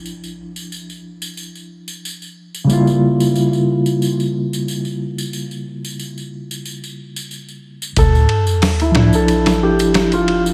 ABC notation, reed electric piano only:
X:1
M:4/4
L:1/8
Q:"Swing 16ths" 1/4=91
K:Dm
V:1 name="Reed electric piano"
[F,DE]8 | [^C,G,^A,EF]8- | [^C,G,^A,EF]8 | z3 [F,DE]4- [F,DE] |]